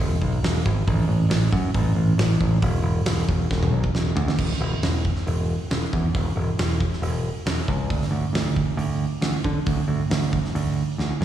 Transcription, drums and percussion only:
0.00 open hi-hat medium
0.22 kick medium
0.44 snare loud
0.44 open hi-hat medium
0.66 kick medium
0.88 kick loud
0.88 open hi-hat medium
1.31 snare loud
1.31 open hi-hat medium
1.53 kick medium
1.74 kick loud
1.74 open hi-hat medium
2.19 snare loud
2.19 open hi-hat medium
2.41 kick medium
2.62 kick loud
2.62 open hi-hat medium
3.06 snare loud
3.06 open hi-hat medium
3.29 kick medium
3.51 kick loud
3.51 snare medium
3.63 high tom medium
3.84 kick medium
3.95 snare medium
4.17 floor tom loud
4.28 snare loud
4.38 kick loud
4.38 crash loud
4.50 snare soft
4.83 snare loud
4.83 open hi-hat medium
5.05 kick medium
5.16 snare soft
5.27 open hi-hat medium
5.71 snare loud
5.71 open hi-hat medium
5.93 kick medium
6.15 kick loud
6.15 open hi-hat medium
6.59 snare loud
6.59 open hi-hat medium
6.80 kick medium
6.93 snare soft
7.03 open hi-hat medium
7.46 snare loud
7.46 open hi-hat medium
7.68 kick medium
7.90 kick loud
7.90 open hi-hat medium
8.02 snare soft
8.35 snare loud
8.35 open hi-hat medium
8.56 kick loud
8.79 open hi-hat medium
9.22 snare loud
9.22 open hi-hat medium
9.44 kick loud
9.66 kick loud
9.66 open hi-hat medium
10.11 snare loud
10.11 open hi-hat medium
10.33 kick medium
10.45 snare soft
10.55 open hi-hat medium
10.99 snare medium

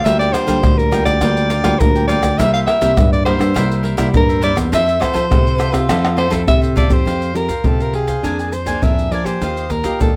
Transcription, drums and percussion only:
0.06 pandeiro medium
0.06 shaker medium
0.06 surdo medium
0.21 pandeiro soft
0.21 shaker soft
0.34 pandeiro medium
0.34 tamborim medium
0.34 shaker medium
0.48 pandeiro medium
0.48 shaker medium
0.48 surdo soft
0.63 pandeiro medium
0.63 tamborim medium
0.63 shaker medium
0.63 surdo loud
0.79 pandeiro soft
0.79 shaker soft
0.92 pandeiro medium
0.92 tamborim medium
0.92 shaker medium
1.06 pandeiro medium
1.06 tamborim medium
1.06 shaker medium
1.06 surdo soft
1.21 pandeiro medium
1.21 tamborim medium
1.21 shaker medium
1.21 surdo medium
1.37 pandeiro soft
1.37 shaker soft
1.50 pandeiro medium
1.50 shaker medium
1.64 pandeiro medium
1.64 tamborim medium
1.64 shaker medium
1.64 surdo soft
1.80 pandeiro medium
1.80 shaker medium
1.80 surdo medium
1.96 pandeiro soft
1.96 shaker soft
2.09 pandeiro medium
2.09 shaker medium
2.23 pandeiro medium
2.23 tamborim medium
2.23 shaker medium
2.23 surdo soft
2.40 pandeiro medium
2.40 shaker medium
2.40 surdo medium
2.54 pandeiro soft
2.54 shaker soft
2.68 pandeiro medium
2.68 tamborim medium
2.82 pandeiro medium
2.82 shaker medium
2.82 surdo soft
2.97 pandeiro medium
2.97 tamborim medium
2.97 shaker medium
2.97 surdo loud
3.13 pandeiro soft
3.13 shaker soft
3.26 pandeiro medium
3.26 tamborim medium
3.41 pandeiro medium
3.41 tamborim medium
3.41 shaker medium
3.41 surdo soft
3.56 pandeiro medium
3.56 tamborim medium
3.56 shaker medium
3.56 surdo medium
3.71 pandeiro soft
3.71 shaker soft
3.85 pandeiro soft
3.98 pandeiro medium
3.98 tamborim medium
3.98 shaker medium
3.98 surdo soft
4.14 pandeiro medium
4.14 shaker medium
4.14 surdo loud
4.30 pandeiro soft
4.30 shaker soft
4.42 pandeiro medium
4.42 shaker medium
4.57 pandeiro medium
4.57 tamborim medium
4.57 shaker medium
4.57 surdo soft
4.73 pandeiro medium
4.73 shaker medium
4.73 surdo medium
4.89 pandeiro soft
4.89 shaker soft
5.02 pandeiro medium
5.02 tamborim medium
5.02 shaker medium
5.02 surdo soft
5.16 pandeiro medium
5.16 shaker medium
5.16 surdo soft
5.32 pandeiro medium
5.32 tamborim medium
5.32 shaker medium
5.32 surdo loud
5.47 pandeiro soft
5.47 shaker soft
5.60 pandeiro medium
5.60 tamborim medium
5.60 shaker medium
5.74 pandeiro medium
5.74 tamborim medium
5.74 shaker medium
5.74 surdo soft
5.89 pandeiro medium
5.89 tamborim medium
5.89 shaker medium
5.89 surdo medium
6.05 pandeiro soft
6.05 tamborim medium
6.05 shaker soft
6.18 pandeiro medium
6.18 tamborim medium
6.32 pandeiro medium
6.32 shaker medium
6.32 surdo soft
6.48 pandeiro medium
6.48 shaker medium
6.48 surdo medium
6.63 pandeiro soft
6.63 shaker soft
6.77 pandeiro medium
6.77 shaker medium
6.77 surdo loud
6.90 pandeiro medium
6.90 shaker medium
6.90 surdo medium
7.07 pandeiro medium
7.07 shaker medium
7.07 surdo medium
7.22 pandeiro soft
7.22 shaker soft
7.35 pandeiro medium
7.35 shaker medium
7.49 pandeiro soft
7.49 shaker medium
7.49 surdo soft
7.64 pandeiro medium
7.64 shaker medium
7.64 surdo loud
7.80 pandeiro soft
7.80 shaker soft
7.94 pandeiro soft
8.08 pandeiro medium
8.08 shaker medium
8.08 surdo soft
8.24 pandeiro medium
8.24 shaker medium
8.24 surdo soft
8.39 pandeiro soft
8.39 shaker soft
8.53 pandeiro soft
8.53 shaker medium
8.67 pandeiro medium
8.67 shaker medium
8.67 surdo soft
8.83 pandeiro medium
8.83 shaker medium
8.83 surdo medium
8.98 pandeiro soft
8.98 shaker soft
9.12 pandeiro soft
9.26 pandeiro medium
9.26 shaker medium
9.26 surdo soft
9.42 pandeiro medium
9.42 shaker medium
9.42 surdo soft
9.57 pandeiro soft
9.57 shaker soft
9.70 pandeiro medium
9.70 shaker medium
9.70 surdo soft
9.84 pandeiro medium
9.84 shaker medium
9.84 surdo soft
10.01 pandeiro medium
10.01 shaker medium
10.01 surdo medium

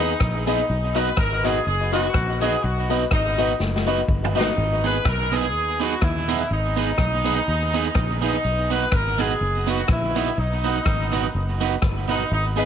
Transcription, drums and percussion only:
0.20 kick loud
0.20 cross-stick loud
0.47 closed hi-hat loud
0.96 closed hi-hat medium
1.17 kick loud
1.17 cross-stick loud
1.44 closed hi-hat loud
1.93 closed hi-hat medium
2.14 kick loud
2.14 cross-stick loud
2.41 closed hi-hat loud
2.90 closed hi-hat medium
3.11 kick loud
3.11 cross-stick loud
3.38 closed hi-hat loud
3.60 snare medium
3.76 snare soft
4.08 kick loud
4.25 floor tom medium
4.41 snare loud
4.84 closed hi-hat medium
5.05 kick loud
5.05 cross-stick loud
5.32 closed hi-hat medium
5.81 closed hi-hat medium
6.02 kick loud
6.02 cross-stick loud
6.29 closed hi-hat loud
6.77 closed hi-hat medium
6.98 kick loud
6.98 cross-stick loud
7.25 closed hi-hat loud
7.74 closed hi-hat medium
7.95 kick loud
7.95 cross-stick loud
8.22 open hi-hat medium
8.44 hi-hat pedal medium
8.71 closed hi-hat medium
8.92 kick loud
8.92 cross-stick loud
9.19 closed hi-hat medium
9.68 closed hi-hat loud
9.88 kick loud
9.88 cross-stick loud
10.16 closed hi-hat loud
10.64 closed hi-hat medium
10.86 kick loud
10.86 cross-stick loud
11.13 closed hi-hat medium
11.61 closed hi-hat medium
11.82 kick loud
11.82 cross-stick loud
12.09 closed hi-hat loud
12.58 closed hi-hat medium

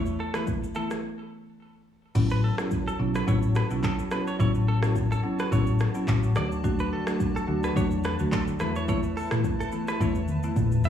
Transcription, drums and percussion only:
0.06 shaker soft
0.34 cross-stick loud
0.34 shaker medium
0.47 kick medium
0.47 shaker medium
0.64 shaker medium
0.75 shaker medium
0.90 cross-stick medium
0.90 shaker medium
2.15 kick loud
2.15 crash medium
2.15 shaker medium
2.30 shaker soft
2.58 cross-stick loud
2.58 shaker medium
2.71 kick medium
2.71 shaker medium
2.88 shaker soft
3.15 cross-stick medium
3.15 shaker medium
3.28 kick loud
3.28 shaker medium
3.42 shaker medium
3.55 cross-stick loud
3.55 shaker medium
3.70 shaker medium
3.83 kick medium
3.83 clap loud
3.83 shaker medium
3.99 shaker medium
4.11 cross-stick loud
4.11 shaker medium
4.27 shaker medium
4.40 kick loud
4.40 shaker medium
4.55 shaker soft
4.83 cross-stick loud
4.83 shaker medium
4.96 kick loud
4.96 shaker medium
5.12 shaker medium
5.39 cross-stick medium
5.39 shaker medium
5.52 kick loud
5.52 shaker medium
5.67 shaker medium
5.79 cross-stick loud
5.79 shaker medium
5.95 shaker medium
6.08 kick medium
6.08 clap medium
6.08 shaker medium
6.23 shaker medium
6.35 cross-stick loud
6.35 shaker medium
6.52 shaker medium
6.64 kick loud
6.64 shaker medium
6.79 shaker soft
7.07 cross-stick loud
7.07 shaker medium
7.20 kick loud
7.20 shaker medium
7.37 shaker medium
7.63 cross-stick medium
7.63 shaker medium
7.76 kick loud
7.76 shaker medium
7.91 shaker medium
8.04 cross-stick loud
8.04 shaker medium
8.19 shaker medium
8.32 kick medium
8.32 clap loud
8.32 shaker medium
8.47 shaker medium
8.59 cross-stick loud
8.59 shaker medium
8.76 shaker medium
8.88 kick loud
8.88 shaker medium
9.03 shaker medium
9.17 open hi-hat medium
9.31 cross-stick loud
9.31 mid tom loud
9.31 shaker medium
9.44 kick loud
9.44 shaker medium
9.61 shaker medium
9.72 shaker medium
9.88 cross-stick medium
9.88 shaker medium
10.01 kick loud
10.01 high tom medium
10.01 shaker medium
10.15 shaker medium
10.28 mid tom medium
10.28 shaker medium
10.43 shaker medium
10.56 kick medium
10.56 mid tom medium
10.56 shaker medium
10.72 mid tom medium
10.72 shaker medium
10.84 floor tom loud
10.84 shaker medium

